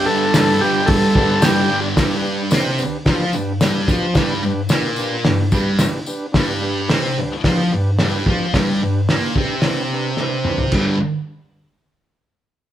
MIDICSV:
0, 0, Header, 1, 6, 480
1, 0, Start_track
1, 0, Tempo, 546946
1, 1731, Time_signature, 4, 2, 24, 8
1, 11166, End_track
2, 0, Start_track
2, 0, Title_t, "Transistor combo organ"
2, 0, Program_c, 0, 18
2, 51, Note_on_c, 0, 69, 86
2, 294, Note_off_c, 0, 69, 0
2, 304, Note_on_c, 0, 69, 102
2, 535, Note_on_c, 0, 67, 96
2, 548, Note_off_c, 0, 69, 0
2, 756, Note_on_c, 0, 69, 90
2, 782, Note_off_c, 0, 67, 0
2, 1244, Note_on_c, 0, 67, 87
2, 1258, Note_off_c, 0, 69, 0
2, 1581, Note_off_c, 0, 67, 0
2, 11166, End_track
3, 0, Start_track
3, 0, Title_t, "Transistor combo organ"
3, 0, Program_c, 1, 18
3, 58, Note_on_c, 1, 62, 80
3, 58, Note_on_c, 1, 67, 79
3, 63, Note_on_c, 1, 71, 90
3, 229, Note_off_c, 1, 62, 0
3, 229, Note_off_c, 1, 67, 0
3, 232, Note_off_c, 1, 71, 0
3, 299, Note_on_c, 1, 62, 77
3, 300, Note_on_c, 1, 67, 70
3, 307, Note_on_c, 1, 71, 81
3, 469, Note_off_c, 1, 62, 0
3, 469, Note_off_c, 1, 67, 0
3, 473, Note_off_c, 1, 71, 0
3, 549, Note_on_c, 1, 62, 70
3, 554, Note_on_c, 1, 71, 90
3, 555, Note_on_c, 1, 67, 71
3, 713, Note_off_c, 1, 62, 0
3, 715, Note_off_c, 1, 71, 0
3, 716, Note_off_c, 1, 67, 0
3, 770, Note_on_c, 1, 62, 78
3, 771, Note_on_c, 1, 67, 74
3, 779, Note_on_c, 1, 71, 92
3, 942, Note_off_c, 1, 62, 0
3, 943, Note_off_c, 1, 67, 0
3, 947, Note_off_c, 1, 71, 0
3, 1013, Note_on_c, 1, 67, 94
3, 1017, Note_on_c, 1, 62, 97
3, 1018, Note_on_c, 1, 71, 116
3, 1183, Note_off_c, 1, 67, 0
3, 1185, Note_off_c, 1, 62, 0
3, 1186, Note_off_c, 1, 71, 0
3, 1247, Note_on_c, 1, 62, 105
3, 1254, Note_on_c, 1, 67, 92
3, 1261, Note_on_c, 1, 71, 116
3, 1419, Note_off_c, 1, 62, 0
3, 1423, Note_off_c, 1, 67, 0
3, 1426, Note_off_c, 1, 71, 0
3, 1484, Note_on_c, 1, 62, 80
3, 1484, Note_on_c, 1, 74, 79
3, 1488, Note_on_c, 1, 67, 63
3, 1657, Note_off_c, 1, 62, 0
3, 1657, Note_off_c, 1, 74, 0
3, 1659, Note_off_c, 1, 67, 0
3, 1723, Note_on_c, 1, 62, 114
3, 1730, Note_on_c, 1, 71, 127
3, 1736, Note_on_c, 1, 67, 105
3, 1896, Note_off_c, 1, 62, 0
3, 1899, Note_off_c, 1, 71, 0
3, 1902, Note_off_c, 1, 67, 0
3, 1941, Note_on_c, 1, 62, 94
3, 1948, Note_on_c, 1, 71, 106
3, 1952, Note_on_c, 1, 67, 85
3, 2124, Note_off_c, 1, 62, 0
3, 2128, Note_off_c, 1, 71, 0
3, 2130, Note_off_c, 1, 67, 0
3, 2200, Note_on_c, 1, 62, 86
3, 2200, Note_on_c, 1, 71, 97
3, 2206, Note_on_c, 1, 67, 77
3, 2373, Note_off_c, 1, 62, 0
3, 2373, Note_off_c, 1, 71, 0
3, 2376, Note_off_c, 1, 67, 0
3, 2439, Note_on_c, 1, 62, 79
3, 2445, Note_on_c, 1, 67, 83
3, 2445, Note_on_c, 1, 71, 88
3, 2612, Note_off_c, 1, 62, 0
3, 2615, Note_off_c, 1, 67, 0
3, 2615, Note_off_c, 1, 71, 0
3, 2677, Note_on_c, 1, 62, 101
3, 2681, Note_on_c, 1, 67, 101
3, 2683, Note_on_c, 1, 71, 124
3, 2851, Note_off_c, 1, 62, 0
3, 2853, Note_off_c, 1, 67, 0
3, 2854, Note_off_c, 1, 71, 0
3, 2921, Note_on_c, 1, 62, 83
3, 2928, Note_on_c, 1, 67, 75
3, 2930, Note_on_c, 1, 71, 103
3, 3093, Note_off_c, 1, 62, 0
3, 3097, Note_off_c, 1, 67, 0
3, 3097, Note_off_c, 1, 71, 0
3, 3169, Note_on_c, 1, 67, 79
3, 3171, Note_on_c, 1, 62, 89
3, 3171, Note_on_c, 1, 71, 98
3, 3337, Note_off_c, 1, 67, 0
3, 3338, Note_off_c, 1, 62, 0
3, 3338, Note_off_c, 1, 71, 0
3, 3400, Note_on_c, 1, 62, 82
3, 3404, Note_on_c, 1, 71, 98
3, 3407, Note_on_c, 1, 67, 78
3, 3572, Note_off_c, 1, 62, 0
3, 3574, Note_off_c, 1, 71, 0
3, 3576, Note_off_c, 1, 67, 0
3, 3630, Note_on_c, 1, 62, 115
3, 3632, Note_on_c, 1, 67, 105
3, 3636, Note_on_c, 1, 71, 127
3, 3807, Note_off_c, 1, 62, 0
3, 3808, Note_off_c, 1, 67, 0
3, 3810, Note_off_c, 1, 71, 0
3, 3879, Note_on_c, 1, 62, 85
3, 3881, Note_on_c, 1, 67, 83
3, 3895, Note_on_c, 1, 71, 100
3, 4052, Note_off_c, 1, 62, 0
3, 4053, Note_off_c, 1, 67, 0
3, 4059, Note_off_c, 1, 71, 0
3, 4131, Note_on_c, 1, 62, 83
3, 4136, Note_on_c, 1, 67, 79
3, 4145, Note_on_c, 1, 71, 90
3, 4297, Note_off_c, 1, 62, 0
3, 4300, Note_off_c, 1, 67, 0
3, 4304, Note_off_c, 1, 71, 0
3, 4363, Note_on_c, 1, 62, 82
3, 4372, Note_on_c, 1, 67, 70
3, 4375, Note_on_c, 1, 71, 89
3, 4533, Note_off_c, 1, 62, 0
3, 4538, Note_off_c, 1, 67, 0
3, 4540, Note_off_c, 1, 71, 0
3, 4606, Note_on_c, 1, 62, 112
3, 4612, Note_on_c, 1, 67, 103
3, 4617, Note_on_c, 1, 71, 115
3, 4775, Note_off_c, 1, 62, 0
3, 4778, Note_off_c, 1, 67, 0
3, 4780, Note_off_c, 1, 71, 0
3, 4845, Note_on_c, 1, 62, 89
3, 4854, Note_on_c, 1, 67, 79
3, 4864, Note_on_c, 1, 71, 95
3, 5015, Note_off_c, 1, 62, 0
3, 5019, Note_off_c, 1, 67, 0
3, 5024, Note_off_c, 1, 71, 0
3, 5086, Note_on_c, 1, 62, 91
3, 5095, Note_on_c, 1, 67, 80
3, 5095, Note_on_c, 1, 71, 105
3, 5255, Note_off_c, 1, 62, 0
3, 5260, Note_off_c, 1, 67, 0
3, 5260, Note_off_c, 1, 71, 0
3, 5326, Note_on_c, 1, 67, 74
3, 5328, Note_on_c, 1, 62, 81
3, 5338, Note_on_c, 1, 71, 91
3, 5496, Note_off_c, 1, 62, 0
3, 5496, Note_off_c, 1, 67, 0
3, 5502, Note_off_c, 1, 71, 0
3, 5547, Note_on_c, 1, 62, 115
3, 5559, Note_on_c, 1, 67, 108
3, 5567, Note_on_c, 1, 71, 119
3, 5726, Note_off_c, 1, 62, 0
3, 5732, Note_off_c, 1, 67, 0
3, 5736, Note_off_c, 1, 71, 0
3, 5801, Note_on_c, 1, 62, 96
3, 5807, Note_on_c, 1, 67, 77
3, 5822, Note_on_c, 1, 71, 101
3, 5973, Note_off_c, 1, 62, 0
3, 5976, Note_off_c, 1, 67, 0
3, 5984, Note_off_c, 1, 71, 0
3, 6038, Note_on_c, 1, 62, 91
3, 6041, Note_on_c, 1, 71, 98
3, 6044, Note_on_c, 1, 67, 80
3, 6212, Note_off_c, 1, 62, 0
3, 6214, Note_off_c, 1, 71, 0
3, 6215, Note_off_c, 1, 67, 0
3, 6293, Note_on_c, 1, 67, 77
3, 6294, Note_on_c, 1, 62, 83
3, 6302, Note_on_c, 1, 71, 92
3, 6460, Note_off_c, 1, 62, 0
3, 6460, Note_off_c, 1, 67, 0
3, 6464, Note_off_c, 1, 71, 0
3, 6525, Note_on_c, 1, 62, 114
3, 6530, Note_on_c, 1, 71, 126
3, 6533, Note_on_c, 1, 67, 94
3, 6696, Note_off_c, 1, 62, 0
3, 6699, Note_off_c, 1, 71, 0
3, 6700, Note_off_c, 1, 67, 0
3, 6771, Note_on_c, 1, 62, 84
3, 6773, Note_on_c, 1, 67, 81
3, 6779, Note_on_c, 1, 71, 94
3, 6940, Note_off_c, 1, 62, 0
3, 6940, Note_off_c, 1, 67, 0
3, 6943, Note_off_c, 1, 71, 0
3, 7007, Note_on_c, 1, 62, 88
3, 7012, Note_on_c, 1, 67, 80
3, 7014, Note_on_c, 1, 71, 97
3, 7178, Note_off_c, 1, 62, 0
3, 7180, Note_off_c, 1, 67, 0
3, 7181, Note_off_c, 1, 71, 0
3, 7263, Note_on_c, 1, 62, 74
3, 7264, Note_on_c, 1, 67, 69
3, 7265, Note_on_c, 1, 71, 85
3, 7426, Note_off_c, 1, 62, 0
3, 7426, Note_off_c, 1, 67, 0
3, 7427, Note_off_c, 1, 71, 0
3, 7496, Note_on_c, 1, 62, 115
3, 7502, Note_on_c, 1, 67, 102
3, 7505, Note_on_c, 1, 71, 123
3, 7663, Note_off_c, 1, 62, 0
3, 7666, Note_off_c, 1, 67, 0
3, 7668, Note_off_c, 1, 71, 0
3, 7739, Note_on_c, 1, 62, 88
3, 7745, Note_on_c, 1, 67, 76
3, 7752, Note_on_c, 1, 71, 94
3, 7905, Note_off_c, 1, 62, 0
3, 7908, Note_off_c, 1, 67, 0
3, 7911, Note_off_c, 1, 71, 0
3, 7978, Note_on_c, 1, 62, 89
3, 7984, Note_on_c, 1, 67, 73
3, 7989, Note_on_c, 1, 71, 89
3, 8144, Note_off_c, 1, 62, 0
3, 8148, Note_off_c, 1, 67, 0
3, 8150, Note_off_c, 1, 71, 0
3, 8222, Note_on_c, 1, 62, 84
3, 8226, Note_on_c, 1, 71, 86
3, 8228, Note_on_c, 1, 67, 73
3, 8387, Note_off_c, 1, 62, 0
3, 8389, Note_off_c, 1, 71, 0
3, 8390, Note_off_c, 1, 67, 0
3, 8455, Note_on_c, 1, 62, 107
3, 8463, Note_on_c, 1, 67, 92
3, 8468, Note_on_c, 1, 71, 114
3, 8624, Note_off_c, 1, 62, 0
3, 8628, Note_off_c, 1, 67, 0
3, 8630, Note_off_c, 1, 71, 0
3, 8712, Note_on_c, 1, 62, 84
3, 8722, Note_on_c, 1, 67, 73
3, 8725, Note_on_c, 1, 71, 93
3, 8873, Note_off_c, 1, 62, 0
3, 8878, Note_off_c, 1, 67, 0
3, 8879, Note_off_c, 1, 71, 0
3, 8946, Note_on_c, 1, 62, 85
3, 8949, Note_on_c, 1, 67, 79
3, 8956, Note_on_c, 1, 71, 91
3, 9110, Note_off_c, 1, 62, 0
3, 9112, Note_off_c, 1, 67, 0
3, 9115, Note_off_c, 1, 71, 0
3, 9191, Note_on_c, 1, 62, 80
3, 9195, Note_on_c, 1, 67, 72
3, 9204, Note_on_c, 1, 71, 91
3, 9353, Note_off_c, 1, 62, 0
3, 9355, Note_off_c, 1, 67, 0
3, 9360, Note_off_c, 1, 71, 0
3, 9423, Note_on_c, 1, 67, 74
3, 9426, Note_on_c, 1, 62, 78
3, 9430, Note_on_c, 1, 71, 85
3, 9643, Note_off_c, 1, 67, 0
3, 9645, Note_off_c, 1, 62, 0
3, 9647, Note_off_c, 1, 71, 0
3, 11166, End_track
4, 0, Start_track
4, 0, Title_t, "Distorted electric guitar"
4, 0, Program_c, 2, 30
4, 65, Note_on_c, 2, 43, 88
4, 73, Note_on_c, 2, 50, 85
4, 79, Note_on_c, 2, 55, 102
4, 303, Note_off_c, 2, 43, 0
4, 311, Note_off_c, 2, 50, 0
4, 313, Note_on_c, 2, 43, 100
4, 317, Note_off_c, 2, 55, 0
4, 321, Note_on_c, 2, 50, 104
4, 328, Note_on_c, 2, 55, 105
4, 528, Note_off_c, 2, 43, 0
4, 536, Note_off_c, 2, 50, 0
4, 539, Note_on_c, 2, 43, 78
4, 546, Note_off_c, 2, 55, 0
4, 546, Note_on_c, 2, 50, 88
4, 557, Note_on_c, 2, 55, 92
4, 766, Note_off_c, 2, 43, 0
4, 773, Note_off_c, 2, 50, 0
4, 777, Note_on_c, 2, 43, 99
4, 783, Note_on_c, 2, 50, 103
4, 784, Note_off_c, 2, 55, 0
4, 794, Note_on_c, 2, 55, 114
4, 1016, Note_off_c, 2, 43, 0
4, 1023, Note_off_c, 2, 50, 0
4, 1026, Note_off_c, 2, 55, 0
4, 1026, Note_on_c, 2, 43, 91
4, 1034, Note_on_c, 2, 50, 93
4, 1037, Note_on_c, 2, 55, 93
4, 1256, Note_off_c, 2, 43, 0
4, 1263, Note_off_c, 2, 50, 0
4, 1264, Note_off_c, 2, 55, 0
4, 1266, Note_on_c, 2, 43, 95
4, 1274, Note_on_c, 2, 50, 88
4, 1274, Note_on_c, 2, 55, 107
4, 1484, Note_off_c, 2, 43, 0
4, 1492, Note_off_c, 2, 50, 0
4, 1495, Note_on_c, 2, 43, 97
4, 1503, Note_on_c, 2, 50, 90
4, 1504, Note_off_c, 2, 55, 0
4, 1514, Note_on_c, 2, 55, 97
4, 1718, Note_off_c, 2, 43, 0
4, 1722, Note_off_c, 2, 50, 0
4, 1728, Note_off_c, 2, 55, 0
4, 1733, Note_on_c, 2, 43, 90
4, 1740, Note_on_c, 2, 55, 101
4, 2202, Note_off_c, 2, 43, 0
4, 2206, Note_off_c, 2, 55, 0
4, 2213, Note_on_c, 2, 48, 83
4, 2224, Note_on_c, 2, 60, 108
4, 2443, Note_off_c, 2, 48, 0
4, 2448, Note_off_c, 2, 60, 0
4, 2688, Note_on_c, 2, 53, 86
4, 2698, Note_on_c, 2, 65, 97
4, 2919, Note_off_c, 2, 53, 0
4, 2925, Note_off_c, 2, 65, 0
4, 2939, Note_on_c, 2, 43, 72
4, 3124, Note_off_c, 2, 43, 0
4, 3175, Note_on_c, 2, 43, 81
4, 3190, Note_on_c, 2, 55, 95
4, 3403, Note_off_c, 2, 43, 0
4, 3410, Note_off_c, 2, 55, 0
4, 3421, Note_on_c, 2, 53, 94
4, 3428, Note_on_c, 2, 65, 101
4, 3645, Note_off_c, 2, 53, 0
4, 3649, Note_off_c, 2, 65, 0
4, 3660, Note_on_c, 2, 43, 95
4, 3668, Note_on_c, 2, 55, 115
4, 3885, Note_off_c, 2, 43, 0
4, 3889, Note_off_c, 2, 55, 0
4, 3896, Note_on_c, 2, 43, 70
4, 4082, Note_off_c, 2, 43, 0
4, 4127, Note_on_c, 2, 46, 87
4, 4140, Note_on_c, 2, 58, 96
4, 4599, Note_off_c, 2, 46, 0
4, 4603, Note_on_c, 2, 43, 64
4, 4605, Note_off_c, 2, 58, 0
4, 4796, Note_off_c, 2, 43, 0
4, 4844, Note_on_c, 2, 43, 90
4, 4858, Note_on_c, 2, 55, 102
4, 5077, Note_off_c, 2, 43, 0
4, 5084, Note_off_c, 2, 55, 0
4, 5575, Note_on_c, 2, 43, 100
4, 5586, Note_on_c, 2, 55, 107
4, 6044, Note_off_c, 2, 43, 0
4, 6049, Note_off_c, 2, 55, 0
4, 6053, Note_on_c, 2, 48, 96
4, 6066, Note_on_c, 2, 60, 102
4, 6283, Note_off_c, 2, 48, 0
4, 6289, Note_off_c, 2, 60, 0
4, 6537, Note_on_c, 2, 53, 93
4, 6546, Note_on_c, 2, 65, 91
4, 6765, Note_off_c, 2, 53, 0
4, 6770, Note_off_c, 2, 65, 0
4, 6785, Note_on_c, 2, 43, 67
4, 6969, Note_off_c, 2, 43, 0
4, 7014, Note_on_c, 2, 43, 86
4, 7025, Note_on_c, 2, 55, 89
4, 7244, Note_off_c, 2, 43, 0
4, 7250, Note_off_c, 2, 55, 0
4, 7265, Note_on_c, 2, 53, 91
4, 7281, Note_on_c, 2, 65, 100
4, 7490, Note_off_c, 2, 53, 0
4, 7498, Note_off_c, 2, 65, 0
4, 7501, Note_on_c, 2, 43, 91
4, 7509, Note_on_c, 2, 55, 112
4, 7728, Note_off_c, 2, 43, 0
4, 7733, Note_off_c, 2, 55, 0
4, 7748, Note_on_c, 2, 43, 70
4, 7931, Note_off_c, 2, 43, 0
4, 7986, Note_on_c, 2, 46, 90
4, 7997, Note_on_c, 2, 58, 91
4, 8212, Note_off_c, 2, 46, 0
4, 8217, Note_off_c, 2, 58, 0
4, 8227, Note_on_c, 2, 48, 90
4, 8232, Note_on_c, 2, 60, 84
4, 9416, Note_off_c, 2, 48, 0
4, 9419, Note_off_c, 2, 60, 0
4, 9422, Note_on_c, 2, 43, 88
4, 9427, Note_on_c, 2, 50, 90
4, 9434, Note_on_c, 2, 55, 102
4, 9611, Note_off_c, 2, 43, 0
4, 9614, Note_off_c, 2, 50, 0
4, 9618, Note_off_c, 2, 55, 0
4, 11166, End_track
5, 0, Start_track
5, 0, Title_t, "Muted distorted electric guitar strokes"
5, 2457, Note_on_c, 9, 29, 51
5, 2545, Note_off_c, 9, 29, 0
5, 6296, Note_on_c, 9, 29, 55
5, 6384, Note_off_c, 9, 29, 0
5, 11166, End_track
6, 0, Start_track
6, 0, Title_t, "Drums"
6, 298, Note_on_c, 9, 38, 121
6, 298, Note_on_c, 9, 46, 70
6, 300, Note_on_c, 9, 54, 113
6, 385, Note_off_c, 9, 38, 0
6, 385, Note_off_c, 9, 46, 0
6, 388, Note_off_c, 9, 54, 0
6, 767, Note_on_c, 9, 46, 66
6, 776, Note_on_c, 9, 36, 122
6, 855, Note_off_c, 9, 46, 0
6, 863, Note_off_c, 9, 36, 0
6, 1013, Note_on_c, 9, 36, 94
6, 1100, Note_off_c, 9, 36, 0
6, 1246, Note_on_c, 9, 54, 102
6, 1250, Note_on_c, 9, 38, 111
6, 1250, Note_on_c, 9, 46, 62
6, 1334, Note_off_c, 9, 54, 0
6, 1338, Note_off_c, 9, 38, 0
6, 1338, Note_off_c, 9, 46, 0
6, 1729, Note_on_c, 9, 38, 117
6, 1729, Note_on_c, 9, 46, 63
6, 1730, Note_on_c, 9, 36, 111
6, 1733, Note_on_c, 9, 54, 71
6, 1817, Note_off_c, 9, 38, 0
6, 1817, Note_off_c, 9, 46, 0
6, 1818, Note_off_c, 9, 36, 0
6, 1821, Note_off_c, 9, 54, 0
6, 1972, Note_on_c, 9, 54, 26
6, 2060, Note_off_c, 9, 54, 0
6, 2201, Note_on_c, 9, 54, 93
6, 2210, Note_on_c, 9, 38, 111
6, 2210, Note_on_c, 9, 46, 65
6, 2288, Note_off_c, 9, 54, 0
6, 2298, Note_off_c, 9, 38, 0
6, 2298, Note_off_c, 9, 46, 0
6, 2443, Note_on_c, 9, 54, 65
6, 2531, Note_off_c, 9, 54, 0
6, 2680, Note_on_c, 9, 54, 26
6, 2686, Note_on_c, 9, 36, 99
6, 2687, Note_on_c, 9, 38, 109
6, 2687, Note_on_c, 9, 46, 57
6, 2768, Note_off_c, 9, 54, 0
6, 2774, Note_off_c, 9, 36, 0
6, 2775, Note_off_c, 9, 38, 0
6, 2775, Note_off_c, 9, 46, 0
6, 2922, Note_on_c, 9, 54, 67
6, 3010, Note_off_c, 9, 54, 0
6, 3166, Note_on_c, 9, 54, 91
6, 3167, Note_on_c, 9, 38, 107
6, 3167, Note_on_c, 9, 46, 53
6, 3254, Note_off_c, 9, 38, 0
6, 3254, Note_off_c, 9, 46, 0
6, 3254, Note_off_c, 9, 54, 0
6, 3405, Note_on_c, 9, 36, 109
6, 3410, Note_on_c, 9, 54, 69
6, 3493, Note_off_c, 9, 36, 0
6, 3498, Note_off_c, 9, 54, 0
6, 3640, Note_on_c, 9, 54, 67
6, 3645, Note_on_c, 9, 36, 113
6, 3646, Note_on_c, 9, 38, 121
6, 3646, Note_on_c, 9, 46, 57
6, 3727, Note_off_c, 9, 54, 0
6, 3733, Note_off_c, 9, 36, 0
6, 3734, Note_off_c, 9, 38, 0
6, 3734, Note_off_c, 9, 46, 0
6, 3883, Note_on_c, 9, 54, 28
6, 3971, Note_off_c, 9, 54, 0
6, 4115, Note_on_c, 9, 54, 98
6, 4125, Note_on_c, 9, 38, 115
6, 4125, Note_on_c, 9, 46, 53
6, 4203, Note_off_c, 9, 54, 0
6, 4212, Note_off_c, 9, 38, 0
6, 4212, Note_off_c, 9, 46, 0
6, 4355, Note_on_c, 9, 54, 66
6, 4443, Note_off_c, 9, 54, 0
6, 4602, Note_on_c, 9, 54, 24
6, 4604, Note_on_c, 9, 38, 117
6, 4604, Note_on_c, 9, 46, 54
6, 4689, Note_off_c, 9, 54, 0
6, 4692, Note_off_c, 9, 38, 0
6, 4692, Note_off_c, 9, 46, 0
6, 4842, Note_on_c, 9, 54, 71
6, 4845, Note_on_c, 9, 36, 100
6, 4929, Note_off_c, 9, 54, 0
6, 4933, Note_off_c, 9, 36, 0
6, 5079, Note_on_c, 9, 38, 105
6, 5079, Note_on_c, 9, 46, 51
6, 5079, Note_on_c, 9, 54, 107
6, 5166, Note_off_c, 9, 38, 0
6, 5166, Note_off_c, 9, 46, 0
6, 5167, Note_off_c, 9, 54, 0
6, 5321, Note_on_c, 9, 54, 76
6, 5409, Note_off_c, 9, 54, 0
6, 5566, Note_on_c, 9, 38, 113
6, 5566, Note_on_c, 9, 46, 64
6, 5567, Note_on_c, 9, 36, 110
6, 5654, Note_off_c, 9, 38, 0
6, 5654, Note_off_c, 9, 46, 0
6, 5655, Note_off_c, 9, 36, 0
6, 6051, Note_on_c, 9, 38, 112
6, 6051, Note_on_c, 9, 46, 65
6, 6139, Note_off_c, 9, 38, 0
6, 6139, Note_off_c, 9, 46, 0
6, 6530, Note_on_c, 9, 36, 102
6, 6532, Note_on_c, 9, 38, 106
6, 6532, Note_on_c, 9, 46, 56
6, 6618, Note_off_c, 9, 36, 0
6, 6619, Note_off_c, 9, 38, 0
6, 6619, Note_off_c, 9, 46, 0
6, 7009, Note_on_c, 9, 38, 99
6, 7009, Note_on_c, 9, 46, 50
6, 7096, Note_off_c, 9, 38, 0
6, 7096, Note_off_c, 9, 46, 0
6, 7252, Note_on_c, 9, 36, 108
6, 7340, Note_off_c, 9, 36, 0
6, 7492, Note_on_c, 9, 36, 99
6, 7495, Note_on_c, 9, 38, 114
6, 7495, Note_on_c, 9, 46, 55
6, 7580, Note_off_c, 9, 36, 0
6, 7583, Note_off_c, 9, 38, 0
6, 7583, Note_off_c, 9, 46, 0
6, 7975, Note_on_c, 9, 38, 114
6, 7975, Note_on_c, 9, 46, 56
6, 8063, Note_off_c, 9, 38, 0
6, 8063, Note_off_c, 9, 46, 0
6, 8212, Note_on_c, 9, 36, 96
6, 8299, Note_off_c, 9, 36, 0
6, 8440, Note_on_c, 9, 38, 110
6, 8440, Note_on_c, 9, 46, 54
6, 8528, Note_off_c, 9, 38, 0
6, 8528, Note_off_c, 9, 46, 0
6, 8926, Note_on_c, 9, 38, 52
6, 9014, Note_off_c, 9, 38, 0
6, 9168, Note_on_c, 9, 45, 89
6, 9256, Note_off_c, 9, 45, 0
6, 9286, Note_on_c, 9, 43, 85
6, 9373, Note_off_c, 9, 43, 0
6, 9404, Note_on_c, 9, 49, 89
6, 9411, Note_on_c, 9, 36, 100
6, 9492, Note_off_c, 9, 49, 0
6, 9499, Note_off_c, 9, 36, 0
6, 11166, End_track
0, 0, End_of_file